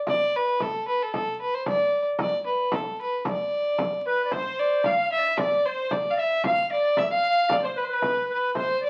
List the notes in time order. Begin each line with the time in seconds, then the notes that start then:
0.07 D5, frame drum
0.34 B4, frame drum
0.60 A4, frame drum
0.88 B4
1.03 A4
1.13 A4, frame drum
1.40 B4, frame drum
1.54 C5
1.66 D5, frame drum
2.19 D5, frame drum
2.45 B4, frame drum
2.72 A4, frame drum
3.01 B4
3.25 D5, frame drum
3.78 frame drum
4.06 B4
4.25 D5
4.31 C5, frame drum
4.58 D5, frame drum
4.84 F5, frame drum
5.12 E5
5.18 D5
5.25 E5
5.38 D5, frame drum
5.65 C5 D5, frame drum
5.91 D5, frame drum
6.11 F5
6.18 E5
6.44 F5, frame drum
6.71 D5, frame drum
6.97 E5, frame drum
7.11 F5
7.49 D5, frame drum
7.62 C5
7.75 B4, frame drum
7.84 C5
7.88 B4
7.93 B4
8.02 frame drum
8.29 B4
8.33 B4
8.54 C5, frame drum
8.58 C5
8.80 D5, frame drum
8.85 D5